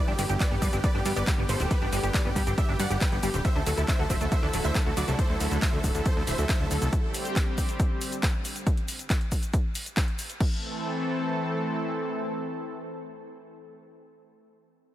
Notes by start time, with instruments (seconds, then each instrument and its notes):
Already playing: analog synth pad D3 G3 B3 G4
0.07 analog synth bass G1, acid bass D4, supersaw synth G4, synth pluck G4
0.18 analog synth bass G1, acid bass G3, supersaw synth G4, synth pluck G4, open hi-hat, shaker
0.29 analog synth bass G1, synth pluck G4, supersaw synth G4, acid bass G4, closed hi-hat, shaker
0.40 acid bass G3, supersaw synth B4 D5, synth pluck D5, kick, clap, closed hi-hat, shaker
0.51 analog synth bass G1, acid bass B3, supersaw synth G4, synth pluck G4
0.62 analog synth bass G2, acid bass G3, supersaw synth B4 D5, synth pluck D5, kick, open hi-hat, shaker
0.73 analog synth bass G1, acid bass C4, supersaw synth G4, synth pluck G4, closed hi-hat, shaker
0.84 acid bass G3, supersaw synth B4 D5, synth pluck D5, kick, closed hi-hat, shaker
0.95 analog synth bass G1, acid bass D4, synth pluck G4, supersaw synth G4
1.05 analog synth bass G2, acid bass G3, supersaw synth G4, synth pluck G4, open hi-hat, shaker
1.16 analog synth bass G1, acid bass G4, supersaw synth B4 D5, synth pluck D5, closed hi-hat, shaker
1.27 acid bass G3, synth pluck G4, supersaw synth G4, kick, clap, closed hi-hat, shaker
1.38 analog synth bass G1, acid bass B3, supersaw synth G4, synth pluck G4
1.49 analog synth bass G1, acid bass G3, supersaw synth A4 C5, synth pluck C5, open hi-hat, shaker
1.60 analog synth bass D1, acid bass C4, synth pluck G4, supersaw synth G4, closed hi-hat, shaker
1.71 acid bass G3, supersaw synth G4 B4, synth pluck B4, kick, closed hi-hat, shaker
1.82 analog synth bass G1, acid bass D4, supersaw synth G4, synth pluck G4
1.92 analog synth bass G1, acid bass G3, synth pluck G4, supersaw synth G4, open hi-hat, shaker
2.03 analog synth bass G1, supersaw synth G4, synth pluck G4, acid bass G4, closed hi-hat, shaker
2.14 acid bass G3, supersaw synth B4 D5, synth pluck D5, kick, clap, closed hi-hat, shaker
2.25 analog synth bass G1, acid bass B3, synth pluck G4, supersaw synth G4
2.36 analog synth bass G2, acid bass G3, synth pluck G4, supersaw synth G4, kick, open hi-hat, shaker
2.47 analog synth bass G1, acid bass C4, synth pluck G4, supersaw synth G4, closed hi-hat, shaker
2.58 acid bass G3, supersaw synth G4 E5, synth pluck E5, kick, closed hi-hat, shaker
2.69 analog synth bass G1, acid bass D4, supersaw synth G4, synth pluck G4
2.79 analog synth bass G2, acid bass G3, supersaw synth D5 F#5, synth pluck F#5, open hi-hat, shaker
2.90 analog synth bass G1, supersaw synth G4, synth pluck G4, acid bass G4, closed hi-hat, shaker
3.01 acid bass G3, supersaw synth B4 G5, synth pluck G5, kick, clap, closed hi-hat, shaker
3.12 analog synth bass G1, acid bass B3, supersaw synth G4, synth pluck G4, closed hi-hat
3.23 analog synth bass G1, acid bass G3, supersaw synth G4, synth pluck G4, open hi-hat, shaker
3.34 analog synth bass D1, acid bass C4, supersaw synth G4, synth pluck G4, closed hi-hat, shaker
3.45 analog synth pad D3 F#3 A3 E4, acid bass F#3, supersaw synth C5 E5, synth pluck E5, kick, closed hi-hat, shaker
3.56 analog synth bass D2, acid bass D4, supersaw synth A4, synth pluck A4
3.66 analog synth bass D2, acid bass F#3, supersaw synth A4, synth pluck A4, open hi-hat, shaker
3.77 analog synth bass D2, acid bass E4, synth pluck A4, supersaw synth A4, closed hi-hat, shaker
3.88 acid bass F#3, supersaw synth C5 E5, synth pluck E5, kick, clap, closed hi-hat, shaker
3.99 analog synth bass D2, acid bass F#4, synth pluck A4, supersaw synth A4
4.10 analog synth bass D1, acid bass F#3, supersaw synth C5 E5, synth pluck E5, kick, open hi-hat, shaker
4.21 analog synth bass D2, acid bass A3, synth pluck A4, supersaw synth A4, closed hi-hat, shaker
4.32 acid bass F#3, supersaw synth C5 E5, synth pluck E5, kick, closed hi-hat, shaker
4.43 analog synth bass D2, acid bass D4, synth pluck A4, supersaw synth A4
4.53 analog synth bass D1, acid bass F#3, synth pluck A4, supersaw synth A4, open hi-hat, shaker
4.64 analog synth bass D2, acid bass E4, supersaw synth C5 E5, synth pluck E5, closed hi-hat, shaker
4.75 acid bass F#3, supersaw synth A4, synth pluck A4, kick, clap, closed hi-hat, shaker
4.86 analog synth bass D2, acid bass F#4, synth pluck A4, supersaw synth A4
4.97 analog synth bass D2, acid bass F#3, supersaw synth F#4 D5, synth pluck D5, open hi-hat, shaker
5.08 analog synth bass C2, acid bass A3, synth pluck A4, supersaw synth A4, closed hi-hat, shaker
5.19 supersaw synth A4 C5, kick, closed hi-hat, shaker
5.30 analog synth bass D2, supersaw synth A4
5.40 analog synth bass D2, supersaw synth A4, open hi-hat, shaker
5.51 analog synth bass D2, supersaw synth A4, closed hi-hat, shaker
5.62 supersaw synth C5 E5, kick, clap, closed hi-hat, shaker
5.73 analog synth bass D2, supersaw synth A4
5.84 analog synth bass D1, supersaw synth A4, kick, open hi-hat, shaker
5.95 analog synth bass D2, supersaw synth A4, closed hi-hat, shaker
6.06 supersaw synth A4 C5, kick, closed hi-hat, shaker
6.16 analog synth bass D2, supersaw synth A4
6.27 analog synth bass D1, supersaw synth C5 E5, open hi-hat, shaker
6.38 analog synth bass D2, supersaw synth A4, closed hi-hat, shaker
6.49 supersaw synth C5 E5, kick, clap, closed hi-hat, shaker
6.60 analog synth bass D2, supersaw synth A4
6.71 analog synth bass D2, supersaw synth A4, open hi-hat, shaker
6.82 analog synth bass C2, supersaw synth A4, closed hi-hat, shaker
6.93 analog synth pad G3 C4 G4, kick, closed hi-hat, shaker
7.14 open hi-hat, shaker
7.25 closed hi-hat, shaker
7.36 kick, clap, closed hi-hat, shaker
7.58 kick, open hi-hat, shaker
7.69 closed hi-hat, shaker
7.80 kick, closed hi-hat, shaker
8.01 open hi-hat, shaker
8.12 closed hi-hat, shaker
8.23 kick, clap, closed hi-hat, shaker
8.45 open hi-hat, shaker
8.56 closed hi-hat, shaker
8.67 kick, closed hi-hat, shaker
8.77 closed hi-hat
8.88 open hi-hat, shaker
8.99 closed hi-hat, shaker
9.10 kick, clap, closed hi-hat, shaker
9.21 closed hi-hat
9.32 kick, open hi-hat, shaker
9.43 closed hi-hat, shaker
9.54 kick, closed hi-hat, shaker
9.75 open hi-hat, shaker
9.86 closed hi-hat, shaker
9.97 kick, clap, closed hi-hat, shaker
10.08 closed hi-hat
10.19 open hi-hat, shaker
10.30 closed hi-hat, shaker
10.40 analog synth pad E3 A3 C4 A4, kick, crash